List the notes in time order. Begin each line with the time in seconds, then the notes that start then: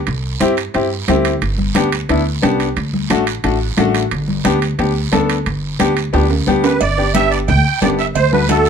0.07 C2, high conga, high timbale, long guiro
0.40 G2 C4 E4 G4, high conga, high timbale, short guiro
0.57 high timbale, short guiro
0.74 G2 C4 E4 G4, high conga, high timbale, long guiro
1.08 D2 C4 E4 G4, high conga, high timbale, low timbale, short guiro
1.25 high timbale, short guiro
1.41 G1, high conga, high timbale, long guiro
1.58 high conga
1.75 D2 B3 D4 G4, high conga, high timbale, short guiro
1.92 high timbale, short guiro
2.09 D2 B3 D4 E4, high conga, high timbale, long guiro
2.42 C2 B3 D4 G4, high conga, high timbale, low timbale, short guiro
2.60 high timbale, short guiro
2.76 D2, high conga, high timbale, long guiro
2.93 high conga
3.10 A1 A3 D4 F#4, high conga, high timbale, short guiro
3.27 high timbale, short guiro
3.44 A1 A3 D4 F#4, high conga, high timbale, long guiro
3.77 A1 A3 D4 F#4, high conga, high timbale, low timbale, short guiro
3.95 high timbale, short guiro
4.11 G1, high conga, high timbale, long guiro
4.28 high conga
4.44 D2 B3 D4 G4, high conga, high timbale, short guiro
4.62 high timbale, short guiro
4.79 D2 B3 D4 G4, high conga, high timbale, long guiro
5.12 D2 B3 D4 A4, high conga, high timbale, low timbale, short guiro
5.30 high timbale, short guiro
5.46 G1, high conga, high timbale, long guiro
5.79 D2 B3 D4 G4, high conga, high timbale, short guiro
5.97 high timbale, short guiro
6.13 D2 B3 D4 G4, high conga, high timbale, long guiro
6.30 low timbale
6.47 D2 B3 D4 G4, high conga, short guiro
6.64 B4, low timbale, short guiro
6.81 G1 D5, cowbell, high conga, long guiro
6.98 B3 D4 G4
7.14 B3 D4 G4 E5, cowbell, high conga, short guiro
7.31 D5, short guiro
7.48 D2 G5, cowbell, high conga, low conga, long guiro
7.82 G1 B3 D4 G4 D5, cowbell, high conga, low timbale, short guiro
7.98 E5, short guiro
8.15 D2 C5, cowbell, high conga, low conga, long guiro
8.32 A3 D4 F#4 B4, high conga
8.49 A3 D4 F#4 A4, cowbell, high conga, short guiro
8.65 short guiro